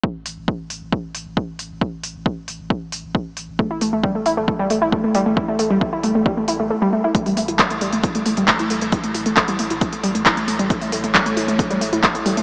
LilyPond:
<<
  \new Staff \with { instrumentName = "Synth arpeggio sound" } { \time 4/4 \key c \major \tempo 4 = 135 r1 | r1 | a16 e'16 a16 a16 g16 a16 e'16 a16 a16 g16 a16 e'16 a16 a16 g16 a16 | e'16 a16 a16 g16 a16 e'16 a16 a16 g16 a16 e'16 a16 a16 g16 a16 e'16 |
a16 g16 a16 e'16 a16 a16 g16 a16 e'16 a16 a16 g16 a16 e'16 a16 a16 | g16 a16 e'16 a16 a16 g16 a16 e'16 a16 a16 g16 a16 e'16 a16 a16 g16 | a16 e'16 a16 a16 g16 a16 e'16 a16 a16 g16 a16 e'16 r16 a16 g16 a16 | }
  \new Staff \with { instrumentName = "Synth drone" } { \clef bass \time 4/4 \key c \major r1 | r1 | r1 | r1 |
<a, a>1~ | <a, a>1~ | <a, a>1 | }
  \new Staff \with { instrumentName = "Sub bass" } { \clef bass \time 4/4 \key c \major r16 a,,16 a,,16 a,,16 r16 a,,16 a,,16 a,,16 r16 a,,16 a,,16 a,,16 r16 a,,16 a,,16 a,,16 | r16 a,,16 a,,16 a,,16 r16 a,,16 a,,16 a,,16 r16 a,,16 a,,16 a,,16 r16 a,,16 a,,16 a,,16 | r16 a,,16 a,,16 a,,16 r16 a,,16 a,,16 a,,16 r16 a,,16 a,,16 a,,16 r16 a,,16 a,,16 a,,16 | r16 a,,16 a,,16 a,,16 r16 a,,16 a,,16 a,,16 r16 a,,16 a,,16 a,,16 r4 |
r16 a,,16 a,,16 a,,16 r16 a,,16 a,,16 a,,16 r16 a,,16 a,,16 a,,16 r16 a,,16 a,,16 a,,16 | r16 a,,16 a,,16 a,,16 r16 a,,16 a,,16 a,,16 r16 a,,16 a,,16 a,,16 r16 a,,16 a,,16 a,,16 | r16 a,,16 a,,16 a,,16 r16 a,,16 a,,16 a,,16 r16 a,,16 a,,16 a,,16 r16 a,,16 a,,16 a,,16 | }
  \new DrumStaff \with { instrumentName = "Drums" } \drummode { \time 4/4 bd8 hho8 bd8 hho8 bd8 hho8 bd8 hho8 | bd8 hho8 bd8 hho8 bd8 hho8 bd8 hho8 | bd8 hho8 bd8 hho8 bd8 hho8 bd8 hho8 | bd8 hho8 bd8 hho8 bd8 hho8 r4 |
<hh bd>16 hho16 hho16 hh16 <hc hh bd>16 hh16 hho16 hh16 <hh bd>16 hh16 hho16 hh16 <hc hh bd>16 hh16 hho16 hh16 | <hh bd>16 hh16 hho16 hh16 <hc hh bd>16 hh16 hho16 hh16 <hh bd>16 hh16 hho16 hh16 <hc hh bd>16 hh16 hho16 hh16 | <hh bd>16 hho16 hho16 hh16 <hc hh bd>16 hh16 hho16 hh16 <hh bd>16 hh16 hho16 hh16 <hc hh bd>16 hh16 hho16 hh16 | }
>>